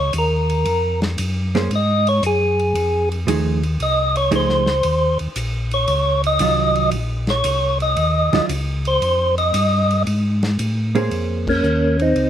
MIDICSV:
0, 0, Header, 1, 5, 480
1, 0, Start_track
1, 0, Key_signature, -5, "minor"
1, 0, Tempo, 522648
1, 608, Time_signature, 4, 2, 24, 8
1, 11294, End_track
2, 0, Start_track
2, 0, Title_t, "Tonewheel organ"
2, 0, Program_c, 0, 16
2, 0, Note_on_c, 0, 73, 106
2, 124, Note_off_c, 0, 73, 0
2, 168, Note_on_c, 0, 70, 65
2, 923, Note_off_c, 0, 70, 0
2, 1610, Note_on_c, 0, 75, 94
2, 1911, Note_off_c, 0, 75, 0
2, 1916, Note_on_c, 0, 73, 112
2, 2052, Note_off_c, 0, 73, 0
2, 2079, Note_on_c, 0, 68, 74
2, 2838, Note_off_c, 0, 68, 0
2, 3511, Note_on_c, 0, 75, 106
2, 3821, Note_off_c, 0, 75, 0
2, 3829, Note_on_c, 0, 73, 106
2, 3968, Note_off_c, 0, 73, 0
2, 4001, Note_on_c, 0, 72, 86
2, 4759, Note_off_c, 0, 72, 0
2, 5270, Note_on_c, 0, 73, 94
2, 5711, Note_off_c, 0, 73, 0
2, 5755, Note_on_c, 0, 75, 124
2, 6338, Note_off_c, 0, 75, 0
2, 6705, Note_on_c, 0, 73, 87
2, 7148, Note_off_c, 0, 73, 0
2, 7183, Note_on_c, 0, 75, 100
2, 7772, Note_off_c, 0, 75, 0
2, 8150, Note_on_c, 0, 72, 91
2, 8590, Note_off_c, 0, 72, 0
2, 8615, Note_on_c, 0, 75, 100
2, 9208, Note_off_c, 0, 75, 0
2, 10551, Note_on_c, 0, 58, 58
2, 10556, Note_on_c, 0, 61, 73
2, 10992, Note_off_c, 0, 58, 0
2, 11033, Note_on_c, 0, 60, 67
2, 11040, Note_on_c, 0, 63, 89
2, 11042, Note_off_c, 0, 61, 0
2, 11294, Note_off_c, 0, 60, 0
2, 11294, Note_off_c, 0, 63, 0
2, 11294, End_track
3, 0, Start_track
3, 0, Title_t, "Hollow-body jazz guitar"
3, 0, Program_c, 1, 26
3, 1422, Note_on_c, 1, 58, 69
3, 1427, Note_on_c, 1, 61, 72
3, 1429, Note_on_c, 1, 72, 66
3, 1431, Note_on_c, 1, 68, 71
3, 1555, Note_off_c, 1, 58, 0
3, 1557, Note_off_c, 1, 61, 0
3, 1558, Note_off_c, 1, 72, 0
3, 1559, Note_off_c, 1, 68, 0
3, 3002, Note_on_c, 1, 53, 65
3, 3010, Note_on_c, 1, 57, 74
3, 3013, Note_on_c, 1, 68, 76
3, 3015, Note_on_c, 1, 63, 74
3, 3303, Note_off_c, 1, 53, 0
3, 3307, Note_off_c, 1, 57, 0
3, 3309, Note_off_c, 1, 68, 0
3, 3310, Note_off_c, 1, 63, 0
3, 3960, Note_on_c, 1, 53, 76
3, 3964, Note_on_c, 1, 57, 67
3, 3967, Note_on_c, 1, 63, 68
3, 3970, Note_on_c, 1, 68, 73
3, 4262, Note_off_c, 1, 53, 0
3, 4264, Note_off_c, 1, 57, 0
3, 4266, Note_off_c, 1, 63, 0
3, 4267, Note_off_c, 1, 68, 0
3, 5881, Note_on_c, 1, 51, 67
3, 5889, Note_on_c, 1, 54, 76
3, 5891, Note_on_c, 1, 61, 65
3, 5893, Note_on_c, 1, 65, 79
3, 6364, Note_off_c, 1, 51, 0
3, 6368, Note_off_c, 1, 54, 0
3, 6368, Note_off_c, 1, 61, 0
3, 6369, Note_off_c, 1, 65, 0
3, 7649, Note_on_c, 1, 51, 78
3, 7657, Note_on_c, 1, 54, 74
3, 7658, Note_on_c, 1, 61, 79
3, 7662, Note_on_c, 1, 65, 86
3, 7787, Note_off_c, 1, 51, 0
3, 7791, Note_off_c, 1, 54, 0
3, 7791, Note_off_c, 1, 61, 0
3, 7793, Note_off_c, 1, 65, 0
3, 10055, Note_on_c, 1, 58, 75
3, 10060, Note_on_c, 1, 61, 74
3, 10061, Note_on_c, 1, 68, 76
3, 10068, Note_on_c, 1, 72, 80
3, 10656, Note_off_c, 1, 58, 0
3, 10659, Note_off_c, 1, 61, 0
3, 10659, Note_off_c, 1, 68, 0
3, 10663, Note_off_c, 1, 72, 0
3, 11294, End_track
4, 0, Start_track
4, 0, Title_t, "Tonewheel organ"
4, 0, Program_c, 2, 16
4, 0, Note_on_c, 2, 37, 89
4, 109, Note_off_c, 2, 37, 0
4, 127, Note_on_c, 2, 39, 87
4, 593, Note_off_c, 2, 39, 0
4, 601, Note_on_c, 2, 41, 84
4, 1070, Note_off_c, 2, 41, 0
4, 1089, Note_on_c, 2, 42, 95
4, 1554, Note_off_c, 2, 42, 0
4, 1565, Note_on_c, 2, 44, 94
4, 2032, Note_off_c, 2, 44, 0
4, 2043, Note_on_c, 2, 42, 82
4, 2511, Note_off_c, 2, 42, 0
4, 2520, Note_on_c, 2, 41, 85
4, 2990, Note_off_c, 2, 41, 0
4, 3006, Note_on_c, 2, 39, 96
4, 3473, Note_off_c, 2, 39, 0
4, 3488, Note_on_c, 2, 36, 90
4, 3954, Note_off_c, 2, 36, 0
4, 3964, Note_on_c, 2, 37, 82
4, 4431, Note_off_c, 2, 37, 0
4, 4447, Note_on_c, 2, 39, 87
4, 4755, Note_off_c, 2, 39, 0
4, 4777, Note_on_c, 2, 39, 43
4, 4852, Note_off_c, 2, 39, 0
4, 4922, Note_on_c, 2, 34, 91
4, 5390, Note_off_c, 2, 34, 0
4, 5401, Note_on_c, 2, 37, 94
4, 5869, Note_off_c, 2, 37, 0
4, 5882, Note_on_c, 2, 36, 92
4, 6350, Note_off_c, 2, 36, 0
4, 6358, Note_on_c, 2, 34, 91
4, 6827, Note_off_c, 2, 34, 0
4, 6839, Note_on_c, 2, 36, 90
4, 7308, Note_off_c, 2, 36, 0
4, 7317, Note_on_c, 2, 39, 94
4, 7629, Note_off_c, 2, 39, 0
4, 7651, Note_on_c, 2, 39, 46
4, 7727, Note_off_c, 2, 39, 0
4, 7798, Note_on_c, 2, 37, 95
4, 8267, Note_off_c, 2, 37, 0
4, 8279, Note_on_c, 2, 41, 86
4, 8748, Note_off_c, 2, 41, 0
4, 8762, Note_on_c, 2, 43, 105
4, 9229, Note_off_c, 2, 43, 0
4, 9249, Note_on_c, 2, 44, 104
4, 9713, Note_off_c, 2, 44, 0
4, 9729, Note_on_c, 2, 45, 88
4, 10193, Note_off_c, 2, 45, 0
4, 10209, Note_on_c, 2, 41, 83
4, 10674, Note_off_c, 2, 41, 0
4, 10685, Note_on_c, 2, 39, 92
4, 11153, Note_off_c, 2, 39, 0
4, 11165, Note_on_c, 2, 37, 85
4, 11294, Note_off_c, 2, 37, 0
4, 11294, End_track
5, 0, Start_track
5, 0, Title_t, "Drums"
5, 119, Note_on_c, 9, 44, 65
5, 119, Note_on_c, 9, 51, 77
5, 211, Note_off_c, 9, 44, 0
5, 211, Note_off_c, 9, 51, 0
5, 455, Note_on_c, 9, 51, 51
5, 547, Note_off_c, 9, 51, 0
5, 601, Note_on_c, 9, 51, 69
5, 692, Note_off_c, 9, 51, 0
5, 934, Note_on_c, 9, 51, 47
5, 937, Note_on_c, 9, 38, 62
5, 1026, Note_off_c, 9, 51, 0
5, 1029, Note_off_c, 9, 38, 0
5, 1083, Note_on_c, 9, 44, 62
5, 1083, Note_on_c, 9, 51, 85
5, 1175, Note_off_c, 9, 44, 0
5, 1175, Note_off_c, 9, 51, 0
5, 1422, Note_on_c, 9, 51, 50
5, 1425, Note_on_c, 9, 38, 45
5, 1514, Note_off_c, 9, 51, 0
5, 1517, Note_off_c, 9, 38, 0
5, 1568, Note_on_c, 9, 51, 64
5, 1660, Note_off_c, 9, 51, 0
5, 1900, Note_on_c, 9, 51, 52
5, 1991, Note_off_c, 9, 51, 0
5, 2046, Note_on_c, 9, 44, 74
5, 2046, Note_on_c, 9, 51, 66
5, 2138, Note_off_c, 9, 44, 0
5, 2138, Note_off_c, 9, 51, 0
5, 2382, Note_on_c, 9, 51, 45
5, 2474, Note_off_c, 9, 51, 0
5, 2528, Note_on_c, 9, 51, 73
5, 2620, Note_off_c, 9, 51, 0
5, 2861, Note_on_c, 9, 51, 50
5, 2953, Note_off_c, 9, 51, 0
5, 3012, Note_on_c, 9, 44, 60
5, 3012, Note_on_c, 9, 51, 92
5, 3104, Note_off_c, 9, 44, 0
5, 3104, Note_off_c, 9, 51, 0
5, 3337, Note_on_c, 9, 51, 51
5, 3428, Note_off_c, 9, 51, 0
5, 3489, Note_on_c, 9, 51, 63
5, 3581, Note_off_c, 9, 51, 0
5, 3816, Note_on_c, 9, 51, 54
5, 3908, Note_off_c, 9, 51, 0
5, 3963, Note_on_c, 9, 44, 52
5, 3963, Note_on_c, 9, 51, 74
5, 4055, Note_off_c, 9, 44, 0
5, 4055, Note_off_c, 9, 51, 0
5, 4124, Note_on_c, 9, 38, 28
5, 4216, Note_off_c, 9, 38, 0
5, 4283, Note_on_c, 9, 38, 48
5, 4291, Note_on_c, 9, 51, 52
5, 4375, Note_off_c, 9, 38, 0
5, 4383, Note_off_c, 9, 51, 0
5, 4437, Note_on_c, 9, 51, 72
5, 4529, Note_off_c, 9, 51, 0
5, 4767, Note_on_c, 9, 51, 52
5, 4859, Note_off_c, 9, 51, 0
5, 4919, Note_on_c, 9, 44, 73
5, 4919, Note_on_c, 9, 51, 88
5, 5011, Note_off_c, 9, 44, 0
5, 5011, Note_off_c, 9, 51, 0
5, 5246, Note_on_c, 9, 51, 53
5, 5338, Note_off_c, 9, 51, 0
5, 5396, Note_on_c, 9, 51, 70
5, 5488, Note_off_c, 9, 51, 0
5, 5727, Note_on_c, 9, 51, 57
5, 5819, Note_off_c, 9, 51, 0
5, 5870, Note_on_c, 9, 44, 58
5, 5870, Note_on_c, 9, 51, 82
5, 5962, Note_off_c, 9, 44, 0
5, 5962, Note_off_c, 9, 51, 0
5, 6204, Note_on_c, 9, 51, 51
5, 6295, Note_off_c, 9, 51, 0
5, 6349, Note_on_c, 9, 51, 71
5, 6441, Note_off_c, 9, 51, 0
5, 6677, Note_on_c, 9, 51, 51
5, 6680, Note_on_c, 9, 38, 50
5, 6769, Note_off_c, 9, 51, 0
5, 6772, Note_off_c, 9, 38, 0
5, 6831, Note_on_c, 9, 44, 72
5, 6831, Note_on_c, 9, 51, 88
5, 6923, Note_off_c, 9, 44, 0
5, 6923, Note_off_c, 9, 51, 0
5, 7164, Note_on_c, 9, 51, 49
5, 7256, Note_off_c, 9, 51, 0
5, 7315, Note_on_c, 9, 51, 73
5, 7407, Note_off_c, 9, 51, 0
5, 7649, Note_on_c, 9, 51, 58
5, 7652, Note_on_c, 9, 38, 63
5, 7741, Note_off_c, 9, 51, 0
5, 7744, Note_off_c, 9, 38, 0
5, 7800, Note_on_c, 9, 44, 64
5, 7800, Note_on_c, 9, 51, 86
5, 7892, Note_off_c, 9, 44, 0
5, 7892, Note_off_c, 9, 51, 0
5, 8129, Note_on_c, 9, 51, 52
5, 8220, Note_off_c, 9, 51, 0
5, 8283, Note_on_c, 9, 51, 72
5, 8375, Note_off_c, 9, 51, 0
5, 8612, Note_on_c, 9, 51, 51
5, 8704, Note_off_c, 9, 51, 0
5, 8760, Note_on_c, 9, 44, 67
5, 8760, Note_on_c, 9, 51, 90
5, 8852, Note_off_c, 9, 44, 0
5, 8852, Note_off_c, 9, 51, 0
5, 9097, Note_on_c, 9, 51, 52
5, 9189, Note_off_c, 9, 51, 0
5, 9245, Note_on_c, 9, 51, 75
5, 9337, Note_off_c, 9, 51, 0
5, 9576, Note_on_c, 9, 51, 54
5, 9579, Note_on_c, 9, 38, 63
5, 9668, Note_off_c, 9, 51, 0
5, 9671, Note_off_c, 9, 38, 0
5, 9725, Note_on_c, 9, 44, 60
5, 9725, Note_on_c, 9, 51, 79
5, 9817, Note_off_c, 9, 44, 0
5, 9817, Note_off_c, 9, 51, 0
5, 10059, Note_on_c, 9, 51, 58
5, 10151, Note_off_c, 9, 51, 0
5, 10206, Note_on_c, 9, 51, 62
5, 10297, Note_off_c, 9, 51, 0
5, 10536, Note_on_c, 9, 49, 73
5, 10537, Note_on_c, 9, 36, 86
5, 10628, Note_off_c, 9, 49, 0
5, 10629, Note_off_c, 9, 36, 0
5, 10685, Note_on_c, 9, 44, 58
5, 10777, Note_off_c, 9, 44, 0
5, 11015, Note_on_c, 9, 51, 45
5, 11107, Note_off_c, 9, 51, 0
5, 11165, Note_on_c, 9, 51, 61
5, 11257, Note_off_c, 9, 51, 0
5, 11294, End_track
0, 0, End_of_file